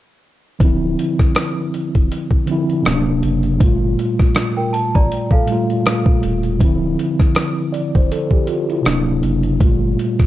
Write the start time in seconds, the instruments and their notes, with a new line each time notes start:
0.59 sub bass D1, tine electric piano D3 F3 C4, kick, closed hi-hat
0.65 tine electric piano E4
0.99 closed hi-hat
1.19 kick, cross-stick
1.35 cross-stick, closed hi-hat
1.74 closed hi-hat
1.95 sub bass E1, kick, closed hi-hat
2.12 closed hi-hat
2.31 kick
2.46 tine electric piano D3 F3 C4, closed hi-hat
2.51 tine electric piano E4
2.70 closed hi-hat
2.82 tine electric piano C3 F#3 A#3, closed hi-hat
2.86 sub bass D1, tine electric piano C#4, cross-stick
2.94 tine electric piano D4
3.23 sub bass F#1, closed hi-hat
3.43 closed hi-hat
3.58 sub bass G1, tine electric piano A2 G3 A3, kick, closed hi-hat
3.64 tine electric piano A#2 F4
3.99 closed hi-hat
4.19 kick, cross-stick
4.35 cross-stick, closed hi-hat
4.57 celesta A#4 G5
4.73 celesta A5, closed hi-hat
4.95 sub bass A1, celesta D5 A#5, kick, closed hi-hat
5.12 closed hi-hat
5.31 celesta A4 F5, kick
5.46 tine electric piano A#2 G3 A3, closed hi-hat
5.52 tine electric piano F4
5.70 closed hi-hat
5.86 cross-stick, closed hi-hat
6.06 kick
6.23 sub bass E1, closed hi-hat
6.43 closed hi-hat
6.59 sub bass D1, tine electric piano D3 F3 C4, kick, closed hi-hat
6.65 tine electric piano E4
6.99 closed hi-hat
7.20 kick, cross-stick
7.35 cross-stick, closed hi-hat
7.73 tine electric piano D5, closed hi-hat
7.95 sub bass E1, tine electric piano C5, kick, closed hi-hat
8.12 tine electric piano A4, closed hi-hat
8.31 tine electric piano G4, kick
8.47 tine electric piano F4, closed hi-hat
8.70 tine electric piano E4, closed hi-hat
8.82 tine electric piano C3 F#3 A#3, closed hi-hat
8.86 sub bass D1, tine electric piano D4, cross-stick
9.23 sub bass F#1, closed hi-hat
9.43 closed hi-hat
9.59 sub bass G1, tine electric piano A#2 G3 A3, kick, closed hi-hat
9.64 tine electric piano F4
9.99 closed hi-hat
10.19 kick, cross-stick, closed hi-hat